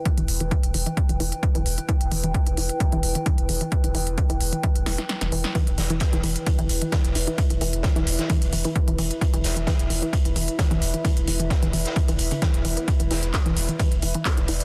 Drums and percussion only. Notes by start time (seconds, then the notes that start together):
0.05 kick, closed hi-hat
0.18 closed hi-hat
0.28 open hi-hat
0.40 closed hi-hat
0.51 kick, closed hi-hat
0.63 closed hi-hat
0.74 open hi-hat
0.86 closed hi-hat
0.97 kick, closed hi-hat
1.09 closed hi-hat
1.20 open hi-hat
1.32 closed hi-hat
1.43 kick, closed hi-hat
1.55 closed hi-hat
1.66 open hi-hat
1.78 closed hi-hat
1.89 kick, closed hi-hat
2.01 closed hi-hat
2.12 open hi-hat
2.24 closed hi-hat
2.34 kick, closed hi-hat
2.46 closed hi-hat
2.57 open hi-hat
2.69 closed hi-hat
2.80 kick, closed hi-hat
2.92 closed hi-hat
3.03 open hi-hat
3.15 closed hi-hat
3.26 kick, closed hi-hat
3.38 closed hi-hat
3.49 open hi-hat
3.61 closed hi-hat
3.72 kick, closed hi-hat
3.84 closed hi-hat
3.95 open hi-hat
4.07 closed hi-hat
4.18 kick, closed hi-hat
4.30 closed hi-hat
4.41 open hi-hat
4.53 closed hi-hat
4.63 kick, closed hi-hat
4.75 closed hi-hat
4.86 snare, open hi-hat
4.98 snare, closed hi-hat
5.09 snare, closed hi-hat
5.21 snare, closed hi-hat
5.32 open hi-hat
5.44 snare, closed hi-hat
5.55 kick, closed hi-hat
5.67 closed hi-hat
5.78 snare, closed hi-hat, open hi-hat
5.90 closed hi-hat
6.00 kick, snare, closed hi-hat
6.13 closed hi-hat
6.23 closed hi-hat, open hi-hat
6.36 closed hi-hat
6.47 kick, closed hi-hat
6.59 closed hi-hat
6.69 closed hi-hat, open hi-hat
6.82 closed hi-hat
6.92 kick, snare, closed hi-hat
7.04 closed hi-hat
7.15 closed hi-hat, open hi-hat
7.27 closed hi-hat
7.38 kick, closed hi-hat
7.50 closed hi-hat
7.61 closed hi-hat, open hi-hat
7.73 closed hi-hat
7.83 kick, snare, closed hi-hat
7.96 closed hi-hat
8.07 closed hi-hat, open hi-hat
8.19 snare, closed hi-hat
8.30 kick, closed hi-hat
8.42 closed hi-hat
8.53 closed hi-hat, open hi-hat
8.64 closed hi-hat
8.76 kick, closed hi-hat
8.88 closed hi-hat
8.99 closed hi-hat, open hi-hat
9.11 closed hi-hat
9.21 kick, closed hi-hat
9.34 closed hi-hat
9.44 snare, closed hi-hat, open hi-hat
9.56 closed hi-hat
9.67 kick, snare, closed hi-hat
9.79 closed hi-hat
9.90 closed hi-hat, open hi-hat
10.02 closed hi-hat
10.13 kick, closed hi-hat
10.25 closed hi-hat
10.36 closed hi-hat, open hi-hat
10.48 closed hi-hat
10.59 kick, snare, closed hi-hat
10.71 closed hi-hat
10.82 closed hi-hat, open hi-hat
10.94 closed hi-hat
11.05 kick, closed hi-hat
11.17 closed hi-hat
11.27 closed hi-hat, open hi-hat
11.40 closed hi-hat
11.50 kick, snare, closed hi-hat
11.63 closed hi-hat
11.73 closed hi-hat, open hi-hat
11.85 snare, closed hi-hat
11.96 kick, closed hi-hat
12.08 closed hi-hat
12.19 closed hi-hat, open hi-hat
12.31 closed hi-hat
12.42 kick, snare, closed hi-hat
12.54 closed hi-hat
12.65 closed hi-hat, open hi-hat
12.77 closed hi-hat
12.88 kick, closed hi-hat
13.00 closed hi-hat
13.11 snare, closed hi-hat, open hi-hat
13.23 closed hi-hat
13.34 kick, snare, clap, closed hi-hat
13.46 closed hi-hat
13.57 closed hi-hat, open hi-hat
13.69 closed hi-hat
13.79 kick, closed hi-hat
13.92 closed hi-hat
14.02 closed hi-hat, open hi-hat
14.14 closed hi-hat
14.25 kick, snare, clap, closed hi-hat
14.37 closed hi-hat
14.48 closed hi-hat, open hi-hat
14.60 closed hi-hat